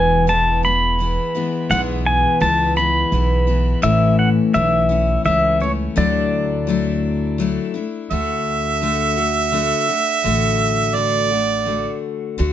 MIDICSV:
0, 0, Header, 1, 5, 480
1, 0, Start_track
1, 0, Key_signature, 2, "major"
1, 0, Tempo, 711744
1, 1147, Time_signature, 3, 2, 24, 8
1, 8449, End_track
2, 0, Start_track
2, 0, Title_t, "Pedal steel guitar"
2, 0, Program_c, 0, 26
2, 0, Note_on_c, 0, 80, 96
2, 193, Note_off_c, 0, 80, 0
2, 196, Note_on_c, 0, 81, 106
2, 434, Note_off_c, 0, 81, 0
2, 436, Note_on_c, 0, 83, 100
2, 1151, Note_on_c, 0, 78, 90
2, 1172, Note_off_c, 0, 83, 0
2, 1215, Note_off_c, 0, 78, 0
2, 1392, Note_on_c, 0, 80, 94
2, 1627, Note_off_c, 0, 80, 0
2, 1629, Note_on_c, 0, 81, 103
2, 1851, Note_off_c, 0, 81, 0
2, 1868, Note_on_c, 0, 83, 99
2, 2558, Note_off_c, 0, 83, 0
2, 2585, Note_on_c, 0, 76, 92
2, 2822, Note_off_c, 0, 76, 0
2, 2825, Note_on_c, 0, 78, 92
2, 2890, Note_off_c, 0, 78, 0
2, 3064, Note_on_c, 0, 76, 93
2, 3516, Note_off_c, 0, 76, 0
2, 3544, Note_on_c, 0, 76, 90
2, 3787, Note_on_c, 0, 73, 74
2, 3791, Note_off_c, 0, 76, 0
2, 3851, Note_off_c, 0, 73, 0
2, 4030, Note_on_c, 0, 74, 77
2, 5200, Note_off_c, 0, 74, 0
2, 8449, End_track
3, 0, Start_track
3, 0, Title_t, "Harmonica"
3, 0, Program_c, 1, 22
3, 5466, Note_on_c, 1, 76, 102
3, 7385, Note_on_c, 1, 74, 96
3, 7395, Note_off_c, 1, 76, 0
3, 8111, Note_off_c, 1, 74, 0
3, 8449, End_track
4, 0, Start_track
4, 0, Title_t, "Steel-string acoustic guitar"
4, 0, Program_c, 2, 25
4, 0, Note_on_c, 2, 40, 74
4, 0, Note_on_c, 2, 47, 72
4, 0, Note_on_c, 2, 52, 84
4, 0, Note_on_c, 2, 56, 78
4, 0, Note_on_c, 2, 59, 86
4, 0, Note_on_c, 2, 64, 87
4, 179, Note_off_c, 2, 52, 0
4, 180, Note_off_c, 2, 56, 0
4, 182, Note_on_c, 2, 52, 62
4, 187, Note_off_c, 2, 40, 0
4, 187, Note_off_c, 2, 59, 0
4, 188, Note_on_c, 2, 56, 67
4, 189, Note_off_c, 2, 47, 0
4, 195, Note_on_c, 2, 59, 77
4, 200, Note_off_c, 2, 64, 0
4, 202, Note_on_c, 2, 64, 74
4, 417, Note_off_c, 2, 64, 0
4, 425, Note_off_c, 2, 52, 0
4, 425, Note_off_c, 2, 59, 0
4, 425, Note_on_c, 2, 64, 53
4, 428, Note_off_c, 2, 56, 0
4, 433, Note_on_c, 2, 59, 50
4, 441, Note_on_c, 2, 56, 44
4, 446, Note_on_c, 2, 52, 45
4, 658, Note_off_c, 2, 52, 0
4, 666, Note_on_c, 2, 52, 48
4, 667, Note_off_c, 2, 64, 0
4, 668, Note_off_c, 2, 56, 0
4, 671, Note_off_c, 2, 59, 0
4, 676, Note_on_c, 2, 56, 54
4, 681, Note_on_c, 2, 59, 56
4, 686, Note_on_c, 2, 64, 62
4, 900, Note_off_c, 2, 64, 0
4, 906, Note_off_c, 2, 59, 0
4, 907, Note_off_c, 2, 52, 0
4, 908, Note_on_c, 2, 64, 53
4, 912, Note_off_c, 2, 56, 0
4, 914, Note_on_c, 2, 59, 55
4, 921, Note_on_c, 2, 56, 51
4, 929, Note_on_c, 2, 52, 42
4, 1147, Note_off_c, 2, 52, 0
4, 1147, Note_off_c, 2, 64, 0
4, 1149, Note_off_c, 2, 56, 0
4, 1149, Note_on_c, 2, 40, 68
4, 1151, Note_off_c, 2, 59, 0
4, 1153, Note_on_c, 2, 47, 77
4, 1155, Note_on_c, 2, 52, 75
4, 1157, Note_on_c, 2, 56, 89
4, 1158, Note_on_c, 2, 59, 81
4, 1161, Note_on_c, 2, 64, 92
4, 1618, Note_off_c, 2, 52, 0
4, 1620, Note_off_c, 2, 56, 0
4, 1621, Note_on_c, 2, 52, 63
4, 1627, Note_off_c, 2, 40, 0
4, 1628, Note_off_c, 2, 59, 0
4, 1629, Note_off_c, 2, 47, 0
4, 1629, Note_on_c, 2, 56, 69
4, 1636, Note_off_c, 2, 64, 0
4, 1636, Note_on_c, 2, 59, 71
4, 1639, Note_on_c, 2, 64, 71
4, 1855, Note_off_c, 2, 64, 0
4, 1863, Note_off_c, 2, 52, 0
4, 1863, Note_on_c, 2, 64, 52
4, 1864, Note_off_c, 2, 59, 0
4, 1867, Note_off_c, 2, 56, 0
4, 1872, Note_on_c, 2, 59, 53
4, 1877, Note_on_c, 2, 56, 51
4, 1884, Note_on_c, 2, 52, 46
4, 2097, Note_off_c, 2, 52, 0
4, 2103, Note_off_c, 2, 56, 0
4, 2104, Note_off_c, 2, 64, 0
4, 2105, Note_on_c, 2, 52, 53
4, 2109, Note_off_c, 2, 59, 0
4, 2111, Note_on_c, 2, 56, 61
4, 2117, Note_on_c, 2, 59, 64
4, 2123, Note_on_c, 2, 64, 63
4, 2332, Note_off_c, 2, 64, 0
4, 2339, Note_off_c, 2, 59, 0
4, 2340, Note_on_c, 2, 64, 51
4, 2345, Note_off_c, 2, 52, 0
4, 2346, Note_off_c, 2, 56, 0
4, 2347, Note_on_c, 2, 59, 47
4, 2354, Note_on_c, 2, 56, 43
4, 2359, Note_on_c, 2, 52, 44
4, 2574, Note_off_c, 2, 52, 0
4, 2577, Note_on_c, 2, 45, 83
4, 2582, Note_off_c, 2, 64, 0
4, 2582, Note_on_c, 2, 52, 79
4, 2584, Note_off_c, 2, 56, 0
4, 2585, Note_off_c, 2, 59, 0
4, 2587, Note_on_c, 2, 57, 87
4, 2589, Note_on_c, 2, 61, 92
4, 2590, Note_on_c, 2, 64, 99
4, 3058, Note_off_c, 2, 52, 0
4, 3060, Note_off_c, 2, 45, 0
4, 3060, Note_on_c, 2, 52, 67
4, 3063, Note_off_c, 2, 61, 0
4, 3064, Note_off_c, 2, 57, 0
4, 3067, Note_on_c, 2, 57, 69
4, 3071, Note_on_c, 2, 61, 73
4, 3075, Note_off_c, 2, 64, 0
4, 3077, Note_on_c, 2, 64, 77
4, 3290, Note_off_c, 2, 64, 0
4, 3298, Note_on_c, 2, 64, 58
4, 3301, Note_off_c, 2, 61, 0
4, 3302, Note_off_c, 2, 52, 0
4, 3305, Note_off_c, 2, 57, 0
4, 3309, Note_on_c, 2, 61, 48
4, 3317, Note_on_c, 2, 57, 45
4, 3536, Note_off_c, 2, 57, 0
4, 3537, Note_on_c, 2, 52, 58
4, 3541, Note_off_c, 2, 61, 0
4, 3541, Note_off_c, 2, 64, 0
4, 3545, Note_on_c, 2, 57, 61
4, 3550, Note_on_c, 2, 61, 70
4, 3556, Note_on_c, 2, 64, 58
4, 3771, Note_off_c, 2, 64, 0
4, 3779, Note_on_c, 2, 64, 54
4, 3780, Note_off_c, 2, 52, 0
4, 3781, Note_off_c, 2, 61, 0
4, 3784, Note_off_c, 2, 57, 0
4, 3789, Note_on_c, 2, 61, 47
4, 3799, Note_on_c, 2, 57, 50
4, 4017, Note_off_c, 2, 57, 0
4, 4017, Note_on_c, 2, 50, 76
4, 4021, Note_off_c, 2, 64, 0
4, 4022, Note_on_c, 2, 54, 81
4, 4024, Note_off_c, 2, 61, 0
4, 4025, Note_on_c, 2, 57, 78
4, 4027, Note_on_c, 2, 62, 77
4, 4032, Note_on_c, 2, 64, 81
4, 4489, Note_off_c, 2, 54, 0
4, 4498, Note_on_c, 2, 54, 63
4, 4500, Note_off_c, 2, 50, 0
4, 4500, Note_off_c, 2, 57, 0
4, 4505, Note_off_c, 2, 62, 0
4, 4508, Note_off_c, 2, 64, 0
4, 4508, Note_on_c, 2, 57, 63
4, 4512, Note_on_c, 2, 62, 67
4, 4520, Note_on_c, 2, 64, 83
4, 4970, Note_off_c, 2, 54, 0
4, 4978, Note_on_c, 2, 54, 63
4, 4980, Note_off_c, 2, 57, 0
4, 4988, Note_off_c, 2, 62, 0
4, 4988, Note_on_c, 2, 57, 69
4, 4992, Note_off_c, 2, 64, 0
4, 4995, Note_on_c, 2, 62, 68
4, 4998, Note_on_c, 2, 64, 69
4, 5211, Note_off_c, 2, 64, 0
4, 5219, Note_on_c, 2, 64, 61
4, 5220, Note_off_c, 2, 62, 0
4, 5221, Note_off_c, 2, 54, 0
4, 5226, Note_off_c, 2, 57, 0
4, 5228, Note_on_c, 2, 62, 49
4, 5240, Note_on_c, 2, 57, 46
4, 5462, Note_off_c, 2, 57, 0
4, 5462, Note_off_c, 2, 64, 0
4, 5466, Note_off_c, 2, 62, 0
4, 5466, Note_on_c, 2, 50, 73
4, 5470, Note_on_c, 2, 57, 70
4, 5473, Note_on_c, 2, 62, 66
4, 5479, Note_on_c, 2, 66, 70
4, 5936, Note_off_c, 2, 50, 0
4, 5944, Note_on_c, 2, 50, 57
4, 5950, Note_off_c, 2, 62, 0
4, 5951, Note_off_c, 2, 57, 0
4, 5953, Note_off_c, 2, 66, 0
4, 5953, Note_on_c, 2, 57, 63
4, 5958, Note_on_c, 2, 62, 63
4, 5963, Note_on_c, 2, 66, 60
4, 6173, Note_off_c, 2, 66, 0
4, 6181, Note_on_c, 2, 66, 51
4, 6183, Note_off_c, 2, 62, 0
4, 6185, Note_off_c, 2, 50, 0
4, 6190, Note_off_c, 2, 57, 0
4, 6191, Note_on_c, 2, 62, 45
4, 6201, Note_on_c, 2, 57, 42
4, 6418, Note_on_c, 2, 50, 58
4, 6419, Note_off_c, 2, 57, 0
4, 6424, Note_off_c, 2, 66, 0
4, 6426, Note_off_c, 2, 62, 0
4, 6427, Note_on_c, 2, 57, 60
4, 6434, Note_on_c, 2, 62, 68
4, 6439, Note_on_c, 2, 66, 66
4, 6653, Note_off_c, 2, 66, 0
4, 6661, Note_on_c, 2, 66, 51
4, 6663, Note_off_c, 2, 50, 0
4, 6663, Note_off_c, 2, 62, 0
4, 6668, Note_off_c, 2, 57, 0
4, 6671, Note_on_c, 2, 62, 43
4, 6682, Note_on_c, 2, 57, 48
4, 6902, Note_off_c, 2, 57, 0
4, 6905, Note_off_c, 2, 66, 0
4, 6905, Note_on_c, 2, 50, 70
4, 6907, Note_off_c, 2, 62, 0
4, 6910, Note_on_c, 2, 57, 86
4, 6915, Note_on_c, 2, 62, 82
4, 6918, Note_on_c, 2, 66, 81
4, 7374, Note_off_c, 2, 50, 0
4, 7382, Note_on_c, 2, 50, 53
4, 7387, Note_off_c, 2, 57, 0
4, 7388, Note_off_c, 2, 62, 0
4, 7390, Note_on_c, 2, 57, 60
4, 7393, Note_off_c, 2, 66, 0
4, 7396, Note_on_c, 2, 62, 59
4, 7401, Note_on_c, 2, 66, 61
4, 7617, Note_off_c, 2, 66, 0
4, 7625, Note_on_c, 2, 66, 49
4, 7627, Note_off_c, 2, 50, 0
4, 7627, Note_off_c, 2, 62, 0
4, 7631, Note_off_c, 2, 57, 0
4, 7635, Note_on_c, 2, 62, 37
4, 7643, Note_on_c, 2, 57, 41
4, 7857, Note_off_c, 2, 57, 0
4, 7858, Note_on_c, 2, 50, 50
4, 7864, Note_off_c, 2, 62, 0
4, 7865, Note_on_c, 2, 57, 57
4, 7869, Note_off_c, 2, 66, 0
4, 7872, Note_on_c, 2, 62, 49
4, 7878, Note_on_c, 2, 66, 47
4, 8340, Note_off_c, 2, 50, 0
4, 8348, Note_off_c, 2, 62, 0
4, 8348, Note_on_c, 2, 50, 78
4, 8349, Note_off_c, 2, 57, 0
4, 8352, Note_off_c, 2, 66, 0
4, 8352, Note_on_c, 2, 57, 81
4, 8356, Note_on_c, 2, 62, 78
4, 8360, Note_on_c, 2, 66, 86
4, 8449, Note_off_c, 2, 50, 0
4, 8449, Note_off_c, 2, 57, 0
4, 8449, Note_off_c, 2, 62, 0
4, 8449, Note_off_c, 2, 66, 0
4, 8449, End_track
5, 0, Start_track
5, 0, Title_t, "Upright bass"
5, 0, Program_c, 3, 32
5, 0, Note_on_c, 3, 28, 101
5, 782, Note_off_c, 3, 28, 0
5, 1145, Note_on_c, 3, 35, 90
5, 1504, Note_off_c, 3, 35, 0
5, 1624, Note_on_c, 3, 37, 89
5, 2032, Note_off_c, 3, 37, 0
5, 2103, Note_on_c, 3, 35, 80
5, 2511, Note_off_c, 3, 35, 0
5, 2581, Note_on_c, 3, 33, 88
5, 2940, Note_off_c, 3, 33, 0
5, 3065, Note_on_c, 3, 35, 87
5, 3472, Note_off_c, 3, 35, 0
5, 3543, Note_on_c, 3, 37, 81
5, 3951, Note_off_c, 3, 37, 0
5, 4022, Note_on_c, 3, 38, 90
5, 5099, Note_off_c, 3, 38, 0
5, 5467, Note_on_c, 3, 38, 73
5, 6545, Note_off_c, 3, 38, 0
5, 6909, Note_on_c, 3, 33, 66
5, 7990, Note_off_c, 3, 33, 0
5, 8355, Note_on_c, 3, 38, 80
5, 8449, Note_off_c, 3, 38, 0
5, 8449, End_track
0, 0, End_of_file